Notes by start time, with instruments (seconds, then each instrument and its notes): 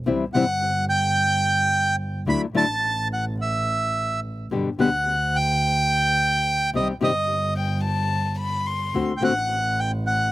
0.05 double bass C2, nylon-string guitar C3 E3 G3 C4 E4
0.34 double bass G1, nylon-string guitar C3 E3 G3 C4 E4, bandoneon F#5
0.89 bandoneon G5
2.26 double bass D2, nylon-string guitar D3 F#3 A3 D4 E4, bandoneon B5
2.54 double bass A1, nylon-string guitar D3 F#3 A3 D4 E4, bandoneon A5
3.13 bandoneon F#5
3.41 bandoneon E5
4.51 double bass G1, nylon-string guitar B2 D3 G3 B3 G4
4.79 double bass D2, nylon-string guitar B2 D3 G3 B3 G4, bandoneon F#5
5.36 bandoneon G5
6.73 double bass C2, nylon-string guitar C3 D#3 G3 C4 G4, bandoneon D#5
7.00 double bass G1, nylon-string guitar C3 D#3 G3 C4 G4, bandoneon D#5
7.56 violin G5
7.84 violin A5
8.39 violin B5
8.66 violin C6
8.94 double bass D2, nylon-string guitar D3 A3 C4 F#4
9.17 nylon-string guitar D3, bandoneon G5
9.22 double bass A1, nylon-string guitar A3 C4 F#4, bandoneon F#5
9.80 bandoneon G5
10.07 bandoneon F#5